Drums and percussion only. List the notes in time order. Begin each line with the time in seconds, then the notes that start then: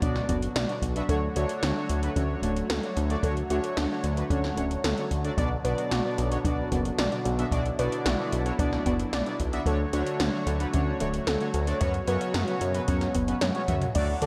0.02 kick, closed hi-hat
0.16 snare
0.29 kick, closed hi-hat
0.42 closed hi-hat
0.56 snare, closed hi-hat
0.69 closed hi-hat
0.82 kick, closed hi-hat
0.96 closed hi-hat
1.09 kick, closed hi-hat
1.36 closed hi-hat
1.49 closed hi-hat
1.63 snare, closed hi-hat
1.89 closed hi-hat
2.03 closed hi-hat
2.16 kick, closed hi-hat
2.42 kick, closed hi-hat
2.56 closed hi-hat
2.70 snare, closed hi-hat
2.83 closed hi-hat
2.97 closed hi-hat
3.10 closed hi-hat
3.23 kick, closed hi-hat
3.37 closed hi-hat
3.50 closed hi-hat
3.64 closed hi-hat
3.77 snare, closed hi-hat
4.04 closed hi-hat
4.17 closed hi-hat
4.30 kick, closed hi-hat
4.44 snare
4.57 kick, closed hi-hat
4.71 closed hi-hat
4.84 snare, closed hi-hat
4.98 closed hi-hat
5.11 kick, closed hi-hat
5.25 closed hi-hat
5.38 kick, closed hi-hat
5.65 closed hi-hat
5.78 closed hi-hat
5.91 snare, closed hi-hat
6.18 closed hi-hat
6.32 closed hi-hat
6.45 kick, closed hi-hat
6.72 kick, closed hi-hat
6.85 closed hi-hat
6.99 snare, closed hi-hat
7.12 closed hi-hat
7.25 closed hi-hat
7.39 closed hi-hat
7.51 kick, closed hi-hat
7.66 closed hi-hat
7.79 closed hi-hat
7.92 closed hi-hat
8.06 snare, closed hi-hat
8.32 closed hi-hat
8.46 closed hi-hat
8.59 kick, closed hi-hat
8.73 snare
8.86 kick, closed hi-hat
8.99 closed hi-hat
9.13 snare, closed hi-hat
9.26 closed hi-hat
9.40 kick, closed hi-hat
9.53 closed hi-hat
9.66 kick, closed hi-hat
9.93 closed hi-hat
10.07 closed hi-hat
10.20 snare, closed hi-hat
10.47 closed hi-hat
10.60 closed hi-hat
10.74 kick, closed hi-hat
11.00 kick, closed hi-hat
11.14 closed hi-hat
11.27 snare, closed hi-hat
11.41 closed hi-hat
11.54 closed hi-hat
11.67 closed hi-hat
11.81 kick, closed hi-hat
11.94 closed hi-hat
12.08 closed hi-hat
12.21 closed hi-hat
12.34 snare, closed hi-hat
12.48 closed hi-hat
12.61 closed hi-hat
12.74 closed hi-hat
12.88 kick, closed hi-hat
13.01 snare, closed hi-hat
13.15 kick, closed hi-hat
13.28 closed hi-hat
13.41 snare, closed hi-hat, high tom
13.55 closed hi-hat, high tom
13.68 kick, closed hi-hat, mid tom
13.82 closed hi-hat, mid tom
13.95 kick, closed hi-hat, crash
14.22 closed hi-hat